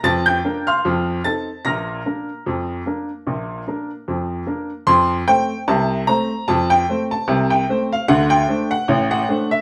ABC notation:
X:1
M:2/4
L:1/16
Q:"Swing 16ths" 1/4=75
K:Bb
V:1 name="Upright piano"
[aa'] [gg']2 [fc'f']3 [aa']2 | [bf'b']8- | [bf'b']6 z2 | [K:F] c'2 g2 a2 b2 |
a g2 a2 g2 f | _g =g2 _g2 g2 e |]
V:2 name="Upright piano"
[F,,F,]2 [B,DB]2 [F,,F,]2 [CEA]2 | [B,,,B,,]2 [B,DB]2 [F,,F,]2 [B,DB]2 | [B,,,B,,]2 [B,DB]2 [F,,F,]2 [B,DB]2 | [K:F] [F,,F,]2 [A,Cc]2 [C,,C,]2 [A,Cc]2 |
[F,,F,]2 [A,Cc]2 [C,,C,]2 [A,Cc]2 | [D,,D,]2 [A,Dc]2 [A,,,A,,]2 [A,Dc]2 |]